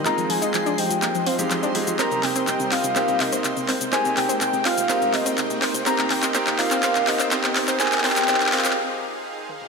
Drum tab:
HH |x-x-o-x-x-x-o-x-x-x-o-x-x-x-o-x-|x-x-o-x-x-x-o-x-x-x-o-x-x-x-o-x-|x-x-o-x-x-x-o-x-x-x-o-x-x-x-o-x-|x-x-o-x-x-x-o-x-x-x-o-x-x-x-o-x-|
SH |x-x---x-x-x---x-x-x---x-x-x---x-|x-x---x-x-x---x-x-x---x-x-x---x-|x-x---x-x-x---x-x-x---x-x-x---x-|x-x---x-x-x---x-x-x---x-x-x---x-|
CP |x-------x-------x-------x-------|x---x---x---x---x---x---x---x---|x---x---x---x---x---x---x---x---|x-x-x-x-x-x-x-x-x-x-x-x-x-x-x-x-|
T1 |--------------------------------|--------------------------------|--------------------------------|--------------------------------|
T2 |--------------------------------|--------------------------------|--------------------------------|--------------------------------|

HH |x-o-o-x-x-x-o-x-----------------|
SH |x-x---x-x-x---x-----------------|
CP |xxxxxxxxxxxxxxxx----------------|
T1 |----------------------------o---|
T2 |------------------------------o-|